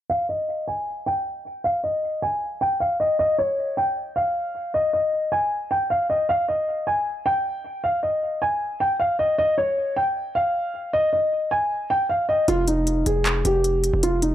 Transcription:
0.10 grand piano F5
0.29 grand piano D#5
0.68 grand piano G#5
1.06 grand piano G5
1.64 grand piano F5
1.84 grand piano D#5
2.22 grand piano G#5
2.61 grand piano G5
2.80 grand piano F5
3.00 grand piano D#5
3.19 grand piano D#5
3.38 grand piano C#5
3.77 grand piano G5
4.16 grand piano F5
4.74 grand piano D#5
4.93 grand piano D#5
5.32 grand piano G#5
5.71 grand piano G5
5.90 grand piano F5
6.10 grand piano D#5
6.29 grand piano F5
6.48 grand piano D#5
6.87 grand piano G#5
7.26 grand piano G5
7.84 grand piano F5
8.03 grand piano D#5
8.42 grand piano G#5
8.80 grand piano G5
9.00 grand piano F5
9.19 grand piano D#5
9.38 grand piano D#5
9.58 grand piano C#5
9.96 grand piano G5
10.35 grand piano F5
10.93 grand piano D#5
11.13 grand piano D#5
11.51 grand piano G#5
11.90 grand piano G5
12.09 grand piano F5
12.29 grand piano D#5
12.48 808-style bass F1, grand piano F4, closed hi-hat
12.68 grand piano D#4, closed hi-hat
12.87 closed hi-hat
13.06 808-style bass F1, grand piano G#4, closed hi-hat
13.26 clap, closed hi-hat
13.45 808-style bass F1, grand piano G4, closed hi-hat
13.64 closed hi-hat
13.84 closed hi-hat
13.93 808-style bass F1
14.03 grand piano F4, closed hi-hat
14.22 grand piano D#4, closed hi-hat

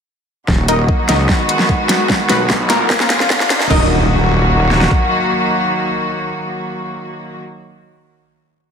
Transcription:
0.48 wobble bass D#1, string section D#3 F#3 A#3 F#4, kick, snare, riser
0.68 synth stab D#4 A#4 D#5, closed hi-hat
0.89 kick
1.09 wobble bass C#2, synth stab D#4 A#4 D#5, snare, closed hi-hat
1.29 string section G#3 B3, kick, snare
1.49 closed hi-hat
1.59 snare
1.69 kick
1.89 snare, closed hi-hat
2.09 string section B3, kick, snare
2.29 wobble bass B1, synth stab B3 F#4 B4, snare, closed hi-hat
2.50 detuned saw bass B1, kick, snare
2.70 synth stab A#3 F4 A#4, snare, closed hi-hat
2.90 string section C#3 F3 A#3 F4, kick, snare
3.00 snare
3.10 snare, closed hi-hat
3.20 snare
3.30 kick, snare
3.40 snare
3.50 snare, closed hi-hat
3.60 snare
3.70 wobble bass D#1, string section D#3 F#3 A#3 F#4, synth stab D#4 A#4 D#5, kick, crash, impact
4.71 snare
4.81 snare
4.91 kick

